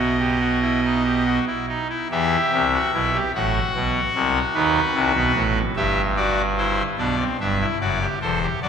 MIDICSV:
0, 0, Header, 1, 2, 480
1, 0, Start_track
1, 0, Key_signature, 1, "minor"
1, 0, Tempo, 849858
1, 1193, Time_signature, 6, 3, 24, 8
1, 1193, Tempo, 813008
1, 5074, End_track
2, 0, Start_track
2, 0, Title_t, "Pipe organ"
2, 0, Program_c, 0, 19
2, 0, Note_on_c, 0, 35, 63
2, 0, Note_on_c, 0, 47, 60
2, 0, Note_on_c, 0, 66, 61
2, 0, Note_on_c, 0, 75, 60
2, 92, Note_off_c, 0, 66, 0
2, 109, Note_on_c, 0, 67, 59
2, 214, Note_off_c, 0, 67, 0
2, 228, Note_on_c, 0, 66, 59
2, 333, Note_off_c, 0, 66, 0
2, 349, Note_on_c, 0, 64, 57
2, 454, Note_off_c, 0, 64, 0
2, 475, Note_on_c, 0, 63, 60
2, 577, Note_off_c, 0, 63, 0
2, 592, Note_on_c, 0, 67, 57
2, 696, Note_off_c, 0, 67, 0
2, 713, Note_on_c, 0, 66, 63
2, 784, Note_off_c, 0, 47, 0
2, 785, Note_off_c, 0, 35, 0
2, 785, Note_off_c, 0, 75, 0
2, 817, Note_off_c, 0, 66, 0
2, 831, Note_on_c, 0, 64, 61
2, 937, Note_off_c, 0, 64, 0
2, 952, Note_on_c, 0, 63, 60
2, 1057, Note_off_c, 0, 63, 0
2, 1069, Note_on_c, 0, 64, 62
2, 1173, Note_off_c, 0, 64, 0
2, 1189, Note_on_c, 0, 67, 78
2, 1190, Note_on_c, 0, 40, 90
2, 1190, Note_on_c, 0, 52, 78
2, 1192, Note_on_c, 0, 76, 70
2, 1342, Note_off_c, 0, 40, 0
2, 1342, Note_off_c, 0, 52, 0
2, 1436, Note_on_c, 0, 36, 92
2, 1437, Note_on_c, 0, 48, 83
2, 1504, Note_off_c, 0, 67, 0
2, 1558, Note_on_c, 0, 66, 70
2, 1586, Note_off_c, 0, 36, 0
2, 1587, Note_off_c, 0, 48, 0
2, 1661, Note_off_c, 0, 66, 0
2, 1680, Note_on_c, 0, 35, 78
2, 1680, Note_on_c, 0, 47, 81
2, 1680, Note_on_c, 0, 64, 69
2, 1782, Note_off_c, 0, 64, 0
2, 1801, Note_on_c, 0, 67, 73
2, 1815, Note_off_c, 0, 76, 0
2, 1828, Note_off_c, 0, 35, 0
2, 1828, Note_off_c, 0, 47, 0
2, 1903, Note_off_c, 0, 67, 0
2, 1923, Note_on_c, 0, 33, 85
2, 1923, Note_on_c, 0, 45, 87
2, 1923, Note_on_c, 0, 66, 72
2, 1924, Note_on_c, 0, 78, 72
2, 2068, Note_off_c, 0, 33, 0
2, 2069, Note_off_c, 0, 45, 0
2, 2161, Note_on_c, 0, 35, 85
2, 2161, Note_on_c, 0, 47, 85
2, 2306, Note_off_c, 0, 35, 0
2, 2307, Note_off_c, 0, 47, 0
2, 2393, Note_on_c, 0, 36, 86
2, 2397, Note_on_c, 0, 48, 89
2, 2534, Note_off_c, 0, 78, 0
2, 2540, Note_off_c, 0, 36, 0
2, 2543, Note_off_c, 0, 48, 0
2, 2631, Note_on_c, 0, 39, 100
2, 2632, Note_on_c, 0, 71, 77
2, 2633, Note_on_c, 0, 51, 90
2, 2778, Note_off_c, 0, 39, 0
2, 2779, Note_off_c, 0, 51, 0
2, 2865, Note_on_c, 0, 48, 98
2, 2866, Note_on_c, 0, 36, 101
2, 2968, Note_off_c, 0, 48, 0
2, 2969, Note_off_c, 0, 36, 0
2, 2981, Note_on_c, 0, 35, 99
2, 2983, Note_on_c, 0, 47, 99
2, 3086, Note_off_c, 0, 35, 0
2, 3087, Note_off_c, 0, 47, 0
2, 3105, Note_on_c, 0, 33, 95
2, 3107, Note_on_c, 0, 45, 93
2, 3149, Note_off_c, 0, 66, 0
2, 3247, Note_off_c, 0, 71, 0
2, 3254, Note_off_c, 0, 33, 0
2, 3255, Note_off_c, 0, 45, 0
2, 3346, Note_on_c, 0, 76, 82
2, 3348, Note_on_c, 0, 31, 96
2, 3348, Note_on_c, 0, 43, 88
2, 3348, Note_on_c, 0, 67, 83
2, 3495, Note_off_c, 0, 76, 0
2, 3496, Note_off_c, 0, 67, 0
2, 3587, Note_on_c, 0, 66, 82
2, 3587, Note_on_c, 0, 74, 79
2, 3736, Note_off_c, 0, 66, 0
2, 3736, Note_off_c, 0, 74, 0
2, 3829, Note_on_c, 0, 64, 81
2, 3829, Note_on_c, 0, 72, 83
2, 3968, Note_off_c, 0, 31, 0
2, 3968, Note_off_c, 0, 43, 0
2, 3978, Note_off_c, 0, 64, 0
2, 3978, Note_off_c, 0, 72, 0
2, 4069, Note_on_c, 0, 35, 74
2, 4071, Note_on_c, 0, 47, 74
2, 4071, Note_on_c, 0, 62, 65
2, 4071, Note_on_c, 0, 74, 61
2, 4174, Note_off_c, 0, 62, 0
2, 4196, Note_on_c, 0, 60, 68
2, 4219, Note_off_c, 0, 35, 0
2, 4220, Note_off_c, 0, 47, 0
2, 4220, Note_off_c, 0, 74, 0
2, 4298, Note_off_c, 0, 60, 0
2, 4314, Note_on_c, 0, 76, 70
2, 4315, Note_on_c, 0, 43, 70
2, 4315, Note_on_c, 0, 62, 63
2, 4316, Note_on_c, 0, 31, 73
2, 4418, Note_off_c, 0, 62, 0
2, 4438, Note_on_c, 0, 64, 65
2, 4463, Note_off_c, 0, 76, 0
2, 4464, Note_off_c, 0, 31, 0
2, 4464, Note_off_c, 0, 43, 0
2, 4539, Note_off_c, 0, 64, 0
2, 4557, Note_on_c, 0, 30, 66
2, 4557, Note_on_c, 0, 42, 74
2, 4557, Note_on_c, 0, 66, 70
2, 4557, Note_on_c, 0, 74, 64
2, 4659, Note_off_c, 0, 66, 0
2, 4679, Note_on_c, 0, 67, 63
2, 4704, Note_off_c, 0, 30, 0
2, 4705, Note_off_c, 0, 42, 0
2, 4705, Note_off_c, 0, 74, 0
2, 4779, Note_off_c, 0, 67, 0
2, 4796, Note_on_c, 0, 72, 73
2, 4798, Note_on_c, 0, 28, 72
2, 4798, Note_on_c, 0, 40, 80
2, 4800, Note_on_c, 0, 69, 68
2, 4899, Note_off_c, 0, 69, 0
2, 4919, Note_on_c, 0, 67, 64
2, 4943, Note_off_c, 0, 72, 0
2, 4944, Note_off_c, 0, 28, 0
2, 4944, Note_off_c, 0, 40, 0
2, 5019, Note_off_c, 0, 67, 0
2, 5036, Note_on_c, 0, 30, 82
2, 5037, Note_on_c, 0, 42, 75
2, 5038, Note_on_c, 0, 66, 72
2, 5038, Note_on_c, 0, 74, 70
2, 5074, Note_off_c, 0, 30, 0
2, 5074, Note_off_c, 0, 42, 0
2, 5074, Note_off_c, 0, 66, 0
2, 5074, Note_off_c, 0, 74, 0
2, 5074, End_track
0, 0, End_of_file